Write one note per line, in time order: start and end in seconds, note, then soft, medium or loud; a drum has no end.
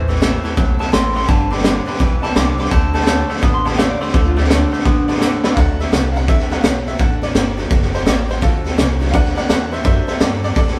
0.00 0.36 A1 loud
0.08 0.20 A2 medium
0.08 0.20 E3 medium
0.08 0.20 C#4 soft
0.08 0.21 E4 medium
0.08 0.21 A4 medium
0.08 0.21 B4 loud
0.08 0.16 C#5 medium
0.08 0.17 E5 medium
0.08 0.17 A5 medium
0.08 snare soft
0.15 snare soft
0.21 0.42 A2 medium
0.21 0.42 E3 medium
0.21 0.44 A3 medium
0.21 0.44 C#4 medium
0.21 0.56 E4 loud
0.21 0.44 E4 medium
0.21 0.42 A4 medium
0.21 0.35 C#5 medium
0.21 0.35 E5 medium
0.21 0.35 A5 medium
0.21 snare loud
0.21 hi-hat pedal medium
0.43 0.56 A2 medium
0.43 0.56 E3 medium
0.43 0.56 C#4 soft
0.43 0.57 E4 medium
0.43 0.57 A4 medium
0.43 0.52 C#5 medium
0.43 0.52 E5 medium
0.43 0.52 A5 medium
0.43 snare soft
0.57 0.87 B1 medium
0.57 0.80 A2 medium
0.57 0.77 A2 medium
0.57 0.78 F#3 medium
0.57 0.80 A3 medium
0.57 0.80 C#4 medium
0.57 0.79 E4 medium
0.57 0.78 A4 medium
0.57 0.71 C#5 medium
0.57 0.71 E5 medium
0.57 0.71 A5 medium
0.57 kick loud
0.57 snare soft
0.79 0.91 A2 medium
0.79 0.92 F#3 medium
0.79 0.92 C#4 soft
0.79 0.92 E4 medium
0.79 0.92 A4 medium
0.79 0.87 C#5 loud
0.79 0.87 E5 medium
0.79 0.88 A5 loud
0.79 0.92 A5 loud
0.79 snare soft
0.92 1.23 A1 medium
0.92 1.13 A2 medium
0.92 1.13 E3 medium
0.92 1.15 A3 medium
0.92 1.15 C#4 medium
0.92 1.14 E4 medium
0.92 1.13 A4 medium
0.92 1.06 C#5 medium
0.92 1.06 E5 medium
0.92 1.06 G5 loud
0.92 1.15 C6 medium
0.92 snare loud
0.92 hi-hat pedal medium
1.14 1.27 A2 medium
1.14 1.27 E3 loud
1.14 1.28 C#4 soft
1.14 1.28 E4 medium
1.14 1.28 A4 medium
1.14 1.23 C#5 medium
1.14 1.23 E5 medium
1.14 1.23 A5 medium
1.14 1.28 C6 medium
1.14 snare soft
1.22 snare soft
1.28 1.79 G1 loud
1.28 1.49 G2 medium
1.28 1.49 D3 medium
1.28 1.51 G3 medium
1.28 1.50 B3 medium
1.28 1.51 D4 medium
1.28 1.49 B4 medium
1.28 1.42 D5 loud
1.28 1.42 G5 medium
1.28 1.51 A5 medium
1.28 1.42 B5 loud
1.28 kick loud
1.28 snare soft
1.50 1.63 G2 medium
1.50 1.63 D3 medium
1.50 1.63 B3 soft
1.50 1.63 D4 medium
1.50 1.64 B4 medium
1.50 1.59 D5 medium
1.50 1.59 G5 medium
1.50 1.59 B5 medium
1.50 1.86 B5 loud
1.50 snare soft
1.58 snare soft
1.63 1.85 G2 medium
1.63 1.85 D3 medium
1.63 1.86 G3 medium
1.63 1.86 B3 medium
1.63 1.87 D4 medium
1.63 1.85 B4 medium
1.63 1.78 D5 medium
1.63 1.78 G5 medium
1.63 1.78 B5 medium
1.63 snare loud
1.63 hi-hat pedal medium
1.86 1.99 G2 medium
1.86 1.99 D3 medium
1.86 1.99 B3 medium
1.86 1.99 D4 soft
1.86 1.99 B4 medium
1.86 1.95 D5 medium
1.86 1.95 G5 medium
1.86 1.95 B5 medium
1.86 snare soft
1.94 snare soft
1.99 2.30 B1 medium
1.99 2.20 G2 medium
1.99 2.21 E3 medium
1.99 2.22 G3 medium
1.99 2.22 B3 medium
1.99 2.23 D4 medium
1.99 2.21 B4 loud
1.99 2.14 D5 medium
1.99 2.14 G5 medium
1.99 2.14 B5 loud
1.99 kick loud
1.99 snare soft
2.22 2.34 G2 medium
2.22 2.35 E3 medium
2.22 2.36 B3 soft
2.22 2.34 D4 medium
2.22 2.35 B4 medium
2.22 2.30 D5 medium
2.22 2.30 G5 medium
2.22 2.35 A5 loud
2.22 2.31 B5 loud
2.22 snare soft
2.35 2.66 C2 medium
2.35 2.56 G2 medium
2.35 2.56 D3 loud
2.35 2.58 G3 medium
2.35 2.58 B3 medium
2.35 2.58 D4 medium
2.35 2.57 B4 medium
2.35 2.49 D5 loud
2.35 2.49 G5 medium
2.35 2.49 A5 loud
2.35 2.58 D6 medium
2.35 snare loud
2.35 hi-hat pedal medium
2.58 2.70 G2 medium
2.58 2.70 D3 medium
2.58 2.71 B3 medium
2.58 2.70 D4 soft
2.58 2.71 B4 medium
2.58 2.66 D5 medium
2.58 2.66 G5 medium
2.58 2.66 B5 medium
2.58 2.71 D6 medium
2.58 snare soft
2.65 snare soft
2.71 3.21 D2 loud
2.71 2.94 D3 medium
2.71 2.92 D3 medium
2.71 2.92 A3 loud
2.71 2.94 D4 medium
2.71 2.94 F#4 medium
2.71 2.92 A4 medium
2.71 2.85 D5 medium
2.71 2.85 F#5 loud
2.71 2.93 A5 medium
2.71 2.85 A5 loud
2.71 kick loud
2.71 snare soft
2.93 3.06 D3 medium
2.93 3.06 A3 medium
2.93 3.06 D4 soft
2.93 3.07 F#4 medium
2.93 3.07 A4 medium
2.93 3.02 D5 medium
2.93 3.02 F#5 medium
2.93 3.02 A5 medium
2.93 3.29 A5 medium
2.93 snare soft
3.00 snare soft
3.06 3.29 D3 medium
3.06 3.27 D3 medium
3.06 3.28 A3 medium
3.06 3.29 F#4 medium
3.06 3.28 A4 medium
3.06 3.20 D5 medium
3.06 3.21 F#5 medium
3.06 3.21 A5 medium
3.06 snare loud
3.06 hi-hat pedal loud
3.29 3.41 D3 medium
3.29 3.41 A3 medium
3.29 3.41 D4 soft
3.29 3.41 F#4 soft
3.29 3.42 A4 medium
3.29 3.37 D5 medium
3.29 3.37 F#5 medium
3.29 3.37 A5 medium
3.29 snare soft
3.36 snare soft
3.41 3.93 A1 medium
3.41 3.65 D3 medium
3.41 3.63 D3 medium
3.41 3.63 B3 loud
3.41 3.65 D4 medium
3.41 3.65 F#4 loud
3.41 3.64 A4 loud
3.41 3.56 D5 loud
3.41 3.56 F#5 medium
3.41 3.56 A5 loud
3.41 kick loud
3.41 snare soft
3.54 3.66 C6 loud
3.65 3.77 D3 medium
3.65 3.77 B3 medium
3.65 3.77 D4 medium
3.65 3.78 F#4 medium
3.65 3.78 A4 medium
3.65 3.73 D5 loud
3.65 3.73 F#5 medium
3.65 3.73 A5 loud
3.65 3.78 A5 medium
3.65 snare soft
3.72 snare soft
3.78 3.99 D3 medium
3.78 3.99 A3 medium
3.78 4.00 F#4 medium
3.78 3.99 A4 medium
3.78 3.92 D5 loud
3.78 3.90 F5 medium
3.78 3.92 F#5 medium
3.78 3.92 A5 loud
3.78 snare loud
3.78 hi-hat pedal medium
3.90 4.01 D5 loud
4.00 4.12 D3 medium
4.00 4.13 A3 medium
4.00 4.13 D4 soft
4.00 4.14 F#4 medium
4.00 4.14 A4 medium
4.00 4.14 C5 medium
4.00 4.09 D5 medium
4.00 4.09 F#5 medium
4.00 4.09 B5 medium
4.00 snare soft
4.08 snare soft
4.14 4.64 D2 loud
4.14 4.34 D3 medium
4.14 4.37 D3 medium
4.14 4.35 A3 medium
4.14 4.37 D4 medium
4.14 4.36 F#4 medium
4.14 4.25 A4 medium
4.14 4.35 A4 medium
4.14 4.27 D5 loud
4.14 4.28 F#5 medium
4.14 4.28 A5 loud
4.14 kick loud
4.14 snare soft
4.25 4.37 F4 loud
4.36 4.48 D3 medium
4.36 4.49 A3 medium
4.36 4.48 D4 medium
4.36 4.49 D4 soft
4.36 4.50 F#4 medium
4.36 4.49 A4 medium
4.36 4.44 D5 medium
4.36 4.45 F#5 medium
4.36 4.45 A5 medium
4.36 snare soft
4.44 snare soft
4.49 4.72 D3 medium
4.49 4.70 D3 medium
4.49 4.70 A3 medium
4.49 5.53 D4 loud
4.49 4.73 D4 medium
4.49 4.72 F#4 medium
4.49 4.71 A4 medium
4.49 4.63 D5 medium
4.49 4.63 F#5 medium
4.49 4.63 A5 medium
4.49 snare loud
4.49 hi-hat pedal medium
4.72 4.84 D3 medium
4.72 4.84 A3 medium
4.72 4.85 D4 soft
4.72 4.85 F#4 medium
4.72 4.85 A4 medium
4.72 4.80 D5 medium
4.72 4.80 F#5 medium
4.72 4.80 A5 medium
4.72 snare soft
4.79 snare soft
4.85 5.35 A1 medium
4.85 5.06 D3 medium
4.85 5.08 D3 medium
4.85 5.06 B3 medium
4.85 5.08 D4 medium
4.85 5.08 F#4 medium
4.85 5.07 A4 medium
4.85 4.99 D5 medium
4.85 4.99 F#5 medium
4.85 4.99 A5 medium
4.85 kick loud
4.85 snare soft
5.08 5.20 D3 medium
5.08 5.20 B3 medium
5.08 5.20 D4 soft
5.08 5.21 F#4 medium
5.08 5.21 A4 medium
5.08 5.16 D5 loud
5.08 5.16 F#5 loud
5.08 5.16 A5 loud
5.08 snare soft
5.15 snare soft
5.21 5.44 D3 medium
5.21 5.41 D3 medium
5.21 5.42 A3 medium
5.21 5.44 D4 medium
5.21 5.44 F#4 medium
5.21 5.43 A4 medium
5.21 5.34 D5 loud
5.21 5.34 F#5 loud
5.21 5.35 A5 loud
5.21 snare medium
5.21 hi-hat pedal medium
5.43 5.55 D3 medium
5.43 5.56 A3 medium
5.43 5.56 D4 medium
5.43 5.57 F#4 medium
5.43 5.57 A4 medium
5.43 5.51 D5 medium
5.43 5.51 F#5 medium
5.43 5.52 B5 medium
5.43 snare medium
5.53 5.91 D2 medium
5.53 5.79 D3 medium
5.53 6.49 F#3 medium
5.53 6.49 A3 medium
5.53 6.50 D4 medium
5.53 5.80 D4 medium
5.53 5.56 F5 medium
5.53 kick loud
5.53 snare soft
5.58 5.80 F#4 medium
5.58 5.78 A4 medium
5.58 5.79 F#5 loud
5.79 5.92 D4 soft
5.79 5.92 F#4 soft
5.79 5.92 A4 medium
5.79 5.93 E5 medium
5.79 snare soft
5.92 6.27 C2 medium
5.92 6.15 D3 medium
5.92 6.15 D4 medium
5.92 6.14 F#4 medium
5.92 6.13 A4 medium
5.92 6.15 F#5 medium
5.92 snare loud
5.92 hi-hat pedal medium
6.12 6.28 F#4 medium
6.12 6.28 A4 medium
6.12 6.14 F5 medium
6.12 snare soft
6.17 6.28 D4 medium
6.17 6.28 F#5 loud
6.28 6.63 D2 medium
6.28 6.51 D3 medium
6.28 6.51 D4 medium
6.28 6.50 F#4 medium
6.28 6.49 A4 medium
6.28 6.51 E5 loud
6.28 kick loud
6.28 snare soft
6.39 snare soft
6.50 6.62 F#3 medium
6.50 6.62 A3 soft
6.50 6.63 D4 medium
6.50 6.63 D4 soft
6.50 6.63 F#4 medium
6.50 6.64 A4 medium
6.50 6.63 F#5 medium
6.50 snare soft
6.60 6.98 B1 loud
6.60 6.86 D3 medium
6.60 6.87 D4 medium
6.60 6.63 F5 medium
6.60 snare loud
6.60 hi-hat pedal medium
6.64 6.86 F#4 medium
6.64 6.85 A4 medium
6.64 6.86 F#5 medium
6.87 6.98 D4 soft
6.87 6.98 F#4 soft
6.87 6.99 A4 medium
6.87 7.00 E5 medium
6.87 snare soft
6.99 7.34 A1 medium
6.99 7.22 D3 medium
6.99 7.22 D4 medium
6.99 7.22 F#4 medium
6.99 7.20 A4 medium
6.99 7.22 F#5 medium
6.99 kick loud
6.99 snare soft
7.22 7.35 D4 soft
7.22 7.35 F#4 medium
7.22 7.35 A4 medium
7.22 7.57 D5 loud
7.22 snare soft
7.35 7.69 G1 medium
7.35 7.58 D3 medium
7.35 7.58 D4 medium
7.35 7.57 F#4 medium
7.35 7.56 A4 medium
7.35 snare loud
7.35 hi-hat pedal medium
7.57 7.78 F#3 medium
7.57 7.79 A3 soft
7.57 7.79 D4 medium
7.57 7.70 D4 soft
7.57 7.70 F#4 medium
7.57 7.70 A4 medium
7.57 snare soft
7.70 8.05 F#1 medium
7.70 7.93 D3 medium
7.70 7.94 D4 medium
7.70 7.94 F#4 medium
7.70 7.92 A4 loud
7.70 kick loud
7.70 snare soft
7.82 snare soft
7.94 8.05 D4 medium
7.94 8.06 F#4 medium
7.94 8.06 A4 medium
7.94 8.07 C5 loud
7.94 snare soft
8.05 8.41 A1 loud
8.05 8.29 D3 medium
8.05 8.29 D4 medium
8.05 8.29 F#4 medium
8.05 8.27 A4 medium
8.05 8.29 D5 medium
8.05 snare loud
8.05 hi-hat pedal medium
8.28 8.41 D4 soft
8.28 8.41 F#4 medium
8.28 8.42 A4 medium
8.28 8.43 C5 medium
8.28 snare soft
8.41 8.77 D2 loud
8.41 8.64 D3 medium
8.41 8.65 D4 medium
8.41 8.75 F4 medium
8.41 8.64 F#4 medium
8.41 8.63 A4 medium
8.41 8.77 A4 loud
8.41 kick loud
8.41 snare soft
8.64 8.77 D4 soft
8.64 8.77 F#4 medium
8.64 8.77 A4 medium
8.64 snare soft
8.77 9.12 C2 loud
8.77 9.00 D3 medium
8.77 9.01 D4 medium
8.77 9.00 F#4 medium
8.77 8.99 A4 medium
8.77 snare loud
8.77 hi-hat pedal medium
8.99 9.82 F#3 medium
8.99 9.83 A3 medium
8.99 9.83 D4 medium
8.99 9.12 D4 medium
8.99 9.13 F#4 medium
8.99 9.13 A4 medium
8.99 snare soft
9.08 9.13 F5 medium
9.08 snare soft
9.13 9.48 D2 medium
9.13 9.36 D3 medium
9.13 9.36 D4 medium
9.13 9.35 F#4 medium
9.13 9.34 A4 medium
9.13 9.35 D5 medium
9.13 9.36 F#5 loud
9.13 kick loud
9.13 snare soft
9.25 snare soft
9.35 9.48 D4 soft
9.35 9.49 F#4 soft
9.35 9.49 A4 medium
9.35 9.48 D5 medium
9.35 9.49 F#5 loud
9.35 snare soft
9.49 9.84 E2 medium
9.49 9.72 D3 medium
9.49 9.72 D4 medium
9.49 9.71 F#4 medium
9.49 9.70 A4 medium
9.49 9.70 D5 medium
9.49 9.72 F#5 loud
9.49 snare loud
9.49 hi-hat pedal medium
9.71 9.83 D4 soft
9.71 9.84 F#4 medium
9.71 9.84 A4 medium
9.71 9.84 C5 medium
9.71 9.84 E5 medium
9.71 snare soft
9.84 10.06 F#2 medium
9.84 10.07 D3 medium
9.84 10.76 F#3 medium
9.84 10.77 A3 medium
9.84 10.07 D4 medium
9.84 10.78 D4 medium
9.84 10.07 F#4 medium
9.84 10.06 A4 medium
9.84 10.06 C5 medium
9.84 10.07 E5 medium
9.84 kick loud
9.84 snare soft
10.07 10.20 D4 soft
10.07 10.20 F#4 soft
10.07 10.20 A4 medium
10.07 10.20 C5 medium
10.07 10.21 E5 medium
10.07 muted upright bass stroke soft
10.07 snare soft
10.20 10.55 G2 loud
10.20 10.43 D3 medium
10.20 10.43 D4 medium
10.20 10.43 F#4 medium
10.20 10.42 A4 medium
10.20 10.41 A4 medium
10.20 10.43 D5 medium
10.20 snare loud
10.20 hi-hat pedal medium
10.43 10.55 D4 soft
10.43 10.56 F#4 medium
10.43 10.56 A4 medium
10.43 10.56 D5 medium
10.43 snare soft
10.55 10.77 A2 medium
10.55 10.78 D3 medium
10.55 10.79 D4 medium
10.55 10.78 F#4 medium
10.55 10.77 A4 medium
10.55 10.78 A4 medium
10.55 10.79 D5 loud
10.55 kick loud
10.55 snare soft
10.68 snare soft